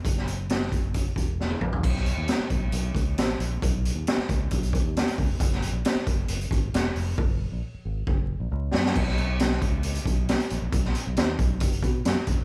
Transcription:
<<
  \new Staff \with { instrumentName = "Fingered electric bass" } { \clef bass \time 4/4 \key b \major \tempo 4 = 135 fis,,4. fis,,4 e,,4 ais,,8 | b,,8. dis,16 r8 b,,8 b,,8 cis,8 a,,8 ais,,8 | b,,8. dis,16 r8 cis,8 b,,8. dis,8 r16 cis,16 eis,,16 | fis,,8. ais,,16 r8 fis,,8 fis,,8 gis,,8 e,,8 eis,,8 |
fis,,8. ais,,16 r8 gis,,8 fis,,8. ais,,16 cis,8 fis,8 | b,,4. cis,4 b,,8. r16 ais,,16 ais,,16 | b,,8 r16 b,,16 dis,8 b,,8 fis,,8 b,8 fis,16 r16 e,,16 eis,,16 | }
  \new DrumStaff \with { instrumentName = "Drums" } \drummode { \time 4/4 <hh bd>16 sn16 hh8 <hh sn>16 sn16 <hh bd>8 <hh bd>8 <hh bd>8 sn16 tommh16 toml16 tomfh16 | <cymc bd>16 sn16 hh8 <hh sn>16 sn16 <hh bd>8 hh8 <hh bd>8 <hh sn>8 hh8 | <hh bd>8 hh8 <hh sn>16 sn16 <hh bd>8 <hh bd>16 hh16 <hh bd>8 <hh sn>16 hh16 <hho bd>8 | <hh bd>16 sn16 hh8 <hh sn>8 <hh bd>8 hh16 hh16 <hh bd>8 <hh sn>8 hho8 |
bd4 r4 bd4 r8 sn16 sn16 | <cymc bd>16 sn16 hh8 <hh sn>16 sn16 <hh bd>8 hh16 hh16 <hh bd>8 <hh sn>16 hh16 hh8 | <hh bd>16 sn16 hh8 <hh sn>16 sn16 <hh bd>8 <hh bd>16 hh16 <hh bd>8 <hh sn>8 <hh bd>8 | }
>>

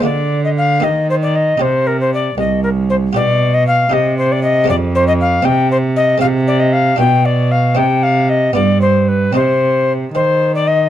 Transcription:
<<
  \new Staff \with { instrumentName = "Recorder" } { \time 6/8 \key c \minor \tempo 4. = 77 d''8. ees''16 f''8 ees''8 c''16 d''16 ees''8 | c''8 bes'16 c''16 d''8 ees''8 bes'8 c''8 | d''8. ees''16 f''8 ees''8 c''16 d''16 ees''8 | d''8 c''16 ees''16 f''8 g''8 c''8 ees''8 |
f''8 d''16 ees''16 f''8 g''8 d''8 f''8 | g''8 f''8 ees''8 d''8 c''8 b'8 | c''4. c''8. d''16 ees''8 | }
  \new Staff \with { instrumentName = "Harpsichord" } { \time 6/8 \key c \minor <aes bes f'>4. <bes g'>4. | <ees' g'>2. | <f' g'>4. <ees' g'>4. | <aes c' f'>4. <c' ees'>4. |
<aes c' f'>4. <d' f'>4. | <c' ees'>4. <b f'>4. | <c' ees'>2. | }
  \new Staff \with { instrumentName = "Harpsichord" } { \clef bass \time 6/8 \key c \minor d4. ees4. | c4. c,4. | b,4. c4. | f,4. c4. |
c4. b,4. | c4. g,4. | c4. ees4. | }
  \new Staff \with { instrumentName = "Cello" } { \clef bass \time 6/8 \key c \minor d4. ees4. | c4. c,4. | b,4. c4. | f,4. c4. |
c4. b,4. | c4. g,4. | c4. ees4. | }
>>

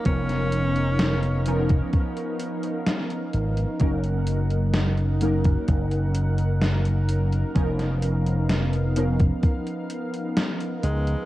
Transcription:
<<
  \new Staff \with { instrumentName = "Analog synth pad" } { \time 4/4 \key cis \mixolydian \tempo 4 = 64 << { <b ais' eis''>1 | <ais' fis''>1 | <b eis''>1 | } \\ { dis'1~ | dis'1~ | dis'1 | } >> }
  \new Staff \with { instrumentName = "Synth keys" } { \time 4/4 \key cis \mixolydian <eis b cis' dis' ais'>4. <eis b cis' dis' ais'>8 r2 | <fis ais cis' dis' ais'>4. <fis ais cis' dis' ais'>8 r2 | <eis b cis' dis' ais'>4. <eis b cis' dis' ais'>8 r2 | }
  \new Staff \with { instrumentName = "Tenor saxophone" } { \time 4/4 \key cis \mixolydian cis'2 r2 | r1 | r2. r8 gis8 | }
  \new Staff \with { instrumentName = "Slap bass" } { \clef bass \time 4/4 \key cis \mixolydian eis,,2 r4. gis,,8 | fis,,2 fis,,2 | eis,,2 r4. cis,8 | }
  \new DrumStaff \with { instrumentName = "Drums" } \drummode { \time 4/4 <hh bd>16 <hh sn>16 hh16 hh16 <hh sn>16 hh16 hh16 <hh bd>16 <hh bd>16 hh16 hh16 hh16 <hh sn>16 hh16 hh16 hh16 | <hh bd>16 hh16 hh16 hh16 <hh sn>16 hh16 hh16 <hh bd>16 <hh bd>16 hh16 hh16 hh16 <hh sn>16 hh16 hh16 hh16 | <hh bd>16 <hh sn>16 hh16 hh16 <hh sn>16 hh16 hh16 <hh bd>16 <hh bd>16 hh16 hh16 hh16 <hh sn>16 hh16 hh16 hh16 | }
>>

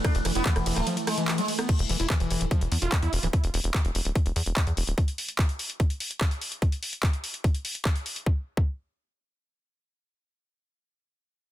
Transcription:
<<
  \new Staff \with { instrumentName = "Sitar" } { \time 4/4 \tempo 4 = 146 d'16 r8 b8 r8 a16 r8 gis16 r8 gis16 r8 | r1 | r1 | r1 |
r1 | r1 | r1 | }
  \new Staff \with { instrumentName = "Synth texture" } { \clef bass \time 4/4 <e a>1 | r1 | r1 | r1 |
r1 | r1 | r1 | }
  \new Staff \with { instrumentName = "Acid bass" } { \clef bass \time 4/4 r8 e16 e'16 e16 e16 e16 e16 f16 r8 e8 gis16 r16 b16 | r8 e16 e'16 e16 e16 e16 e16 f16 r8 f'16 r16 e'16 r16 e16 | r1 | r1 |
r1 | r1 | r1 | }
  \new Staff \with { instrumentName = "Analog synth bass" } { \clef bass \time 4/4 r16 e,,16 e,,16 e,,16 r16 e,,16 e,,16 d,,16 r2 | r16 e,,16 e,,16 e,,16 r16 e,,16 e,,16 d,,16 r16 e,,16 e,16 e,,16 r16 e,16 e,,16 d,,16 | r16 e,,16 e,,16 e,,16 r16 e,,16 e,,16 d,,16 r16 e,,16 e,16 e,,16 r16 e,16 e,,16 d,,16 | r1 |
r1 | r1 | r1 | }
  \new DrumStaff \with { instrumentName = "Drums" } \drummode { \time 4/4 <hh bd cymr ss>16 hh16 <hho cymr ss>16 hh16 <hc hh bd cymr>16 <hh ss>16 <hho cymr>16 <hh ss>16 <hh cymr>16 hh16 <hho cymr ss>16 hh16 <hc hh cymr ss>16 hh16 <hho cymr>16 <hh ss>16 | <cymc hh bd>16 hh16 hho16 hh16 <hc hh bd>16 hh16 hho16 hh16 <hh bd>16 hh16 hho16 hh16 <hc hh bd>16 hh16 hho16 hh16 | <hh bd>16 hh16 hho16 hh16 <hc hh bd>16 hh16 hho16 hh16 <hh bd>16 hh16 hho16 hh16 <hc hh bd>16 hh16 hho16 hh16 | <hh bd>16 hh16 hho16 hh16 <hc hh bd>16 hh16 hho16 hh16 <hh bd>16 hh16 hho16 hh16 <hc hh bd>16 hh16 hho16 hh16 |
<hh bd>16 hh16 hho16 hh16 <hc hh bd>16 hh16 hho16 hh16 <hh bd>16 hh16 hho16 hh16 <hc hh bd>16 hh16 hho16 hh16 | bd8. bd16 r4 r4 r4 | r4 r4 r4 r4 | }
>>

